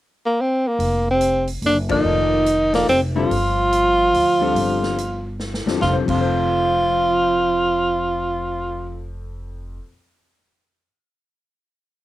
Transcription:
0.26 tenor saxophone A#3
0.41 tenor saxophone C4
0.68 tenor saxophone A#3
0.79 upright bass F1, open hi-hat
1.09 trombone C3, tenor saxophone C4
1.21 closed hi-hat
1.47 open hi-hat
1.62 upright bass F#1, trombone D3, open hi-hat
1.66 tenor saxophone D4
1.89 trombone D#3, grand piano F3 A#3 D#4 A4 D5, tenor saxophone D#4, kick, ride
2.05 upright bass F1
2.46 closed hi-hat
2.73 trombone A#2, grand piano F3 A#3 D#4 A4 D5, tenor saxophone A#3, snare, open hi-hat
2.88 upright bass F1, trombone C3, tenor saxophone C4, open hi-hat
3.15 grand piano D3 G3 C4 F4 A4, trombone F3, tenor saxophone F4
3.31 upright bass G1, open hi-hat
3.72 closed hi-hat
4.14 upright bass D2, open hi-hat
4.41 grand piano D3 G3 C4 F4 A4
4.55 upright bass G1, open hi-hat
4.83 snare
4.98 closed hi-hat
5.40 snare
5.54 snare
5.66 grand piano F2 D3 G3 C4 F4 A4, muted upright bass stroke, snare
5.74 grand piano F3
5.81 upright bass F1, trombone F3, grand piano C4, tenor saxophone F4, kick, snare
5.87 grand piano A4
5.93 grand piano F2 C5
6.02 grand piano F3
6.08 upright bass F1, trombone F3, grand piano C4, tenor saxophone F4, kick, crash
6.14 grand piano A4
6.21 grand piano C5

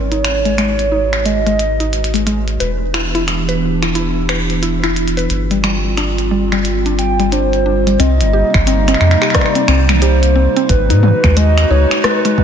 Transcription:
Already playing: analog synth bass G#1, ambient pad G#3 D#4 F#4 B4, soft synth lead C#5
0.12 synth arpeggio sound D#4, closed hi-hat
0.24 finger snap, closed hi-hat
0.45 synth arpeggio sound G#3, closed hi-hat
0.58 synth arpeggio sound G#3, finger snap, closed hi-hat
0.79 closed hi-hat
0.92 synth arpeggio sound D#4
1.13 finger snap
1.25 synth arpeggio sound G#3, soft synth lead D#5, closed hi-hat
1.46 synth arpeggio sound G#3, closed hi-hat
1.59 closed hi-hat
1.80 synth arpeggio sound D#4, closed hi-hat
1.93 closed hi-hat
2.04 closed hi-hat
2.14 synth arpeggio sound G#3, closed hi-hat
2.15 closed hi-hat
2.26 synth arpeggio sound G#3, closed hi-hat
2.48 closed hi-hat
2.60 analog synth bass E1, ambient pad E3 B3 D4 G4, synth arpeggio sound B4, closed hi-hat
2.94 synth arpeggio sound E4, finger snap, closed hi-hat
3.15 synth arpeggio sound E4, closed hi-hat
3.28 finger snap, closed hi-hat
3.49 synth arpeggio sound B4, closed hi-hat
3.82 synth arpeggio sound E4, finger snap, closed hi-hat
3.95 synth arpeggio sound E4, closed hi-hat
4.29 synth arpeggio sound B4, finger snap, closed hi-hat
4.50 closed hi-hat
4.63 synth arpeggio sound E4, closed hi-hat
4.83 synth arpeggio sound E4, finger snap, closed hi-hat
4.96 closed hi-hat
5.08 closed hi-hat
5.17 synth arpeggio sound B4, closed hi-hat
5.19 closed hi-hat
5.30 analog synth bass G1, ambient pad G3 C4 F4, closed hi-hat
5.51 synth arpeggio sound G3, closed hi-hat
5.64 synth arpeggio sound G3, finger snap, closed hi-hat
5.97 synth arpeggio sound D4, finger snap, closed hi-hat
6.18 closed hi-hat
6.31 synth arpeggio sound G3
6.52 synth arpeggio sound G3, finger snap, closed hi-hat
6.65 closed hi-hat
6.86 synth arpeggio sound D4, closed hi-hat
6.99 soft synth lead G5, closed hi-hat
7.19 synth arpeggio sound G3, closed hi-hat
7.32 synth arpeggio sound D4, soft synth lead C5, closed hi-hat
7.53 closed hi-hat
7.66 synth arpeggio sound D4
7.87 synth arpeggio sound G3, closed hi-hat
7.99 analog synth bass C2, ambient pad C3 G3 A#3 D#4, synth arpeggio sound C4, soft synth lead D#5, closed hi-hat
8.20 analog synth bass G1, closed hi-hat
8.33 synth arpeggio sound G4
8.54 analog synth bass G1, finger snap, kick
8.67 synth arpeggio sound C4, soft synth lead D#5, closed hi-hat
8.88 synth arpeggio sound C4, finger snap, closed hi-hat
8.94 finger snap
9.01 analog synth bass F2, finger snap
9.11 finger snap
9.22 synth arpeggio sound G4, finger snap
9.23 finger snap
9.30 finger snap
9.34 soft synth lead D5, finger snap, kick, cross-stick, closed hi-hat
9.41 finger snap
9.46 finger snap
9.55 synth arpeggio sound C4, closed hi-hat
9.68 analog synth bass C2, synth arpeggio sound C4, finger snap
9.89 finger snap, closed hi-hat, high tom
10.02 synth arpeggio sound G4, soft synth lead C5, closed hi-hat
10.23 closed hi-hat
10.36 synth arpeggio sound C4
10.56 synth arpeggio sound C4, closed hi-hat
10.69 analog synth bass G#1, ambient pad G#3 D#4 F#4 B4, soft synth lead B4, kick, closed hi-hat
10.90 analog synth bass G#2, synth arpeggio sound D#4, closed hi-hat
11.03 high tom
11.24 analog synth bass D#2, synth arpeggio sound G#3, finger snap, kick
11.37 synth arpeggio sound G#3, soft synth lead D#5, closed hi-hat
11.58 finger snap, closed hi-hat
11.70 analog synth bass C#2, synth arpeggio sound D#4, soft synth lead C#5
11.91 finger snap
12.04 synth arpeggio sound G#3, soft synth lead B4, cross-stick, closed hi-hat
12.25 synth arpeggio sound G#3, closed hi-hat
12.38 kick, high tom

